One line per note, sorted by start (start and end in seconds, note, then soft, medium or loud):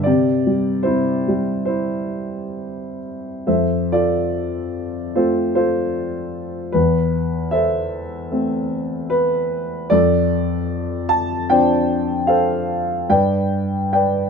0.03 0.86 C3 medium
0.03 0.82 G4 medium
0.03 0.87 D5 medium
0.47 1.27 G3 soft
0.83 1.64 E4 medium
0.83 1.64 C5 medium
0.87 2.54 C3 soft
1.28 3.00 G3 soft
1.65 2.98 E4 soft
1.65 2.97 C5 medium
3.47 6.70 F2 soft
3.47 3.91 A4 soft
3.47 5.11 C5 soft
3.47 3.92 E5 medium
3.92 5.14 F4 soft
3.92 5.14 A4 soft
3.92 5.20 D5 medium
5.15 6.70 F3 soft
5.15 6.71 A3 soft
5.15 6.71 C4 soft
5.15 5.55 F4 soft
5.15 5.54 A4 soft
5.15 5.54 C5 medium
5.55 6.71 F4 soft
5.55 6.71 A4 soft
5.55 6.78 C5 medium
6.72 9.86 E2 medium
6.72 7.49 B4 medium
7.51 9.06 A4 medium
7.51 9.06 C5 soft
7.51 9.14 E5 medium
8.31 9.85 A3 soft
8.31 9.86 C4 soft
9.10 9.92 B4 medium
9.90 13.06 F2 medium
9.90 11.46 A4 medium
9.90 11.12 D5 medium
11.09 11.46 A5 medium
11.50 13.06 F3 soft
11.50 13.06 C4 soft
11.50 13.06 D4 soft
11.50 12.27 C5 medium
11.50 13.07 D5 medium
11.50 12.31 G5 medium
12.27 13.05 A4 medium
12.27 13.06 C5 medium
12.27 13.11 F5 medium
13.09 14.30 G2 medium
13.09 13.93 B4 medium
13.09 13.93 D5 medium
13.09 13.91 G5 medium
13.93 14.30 B4 medium
13.93 14.30 D5 medium
13.93 14.30 G5 medium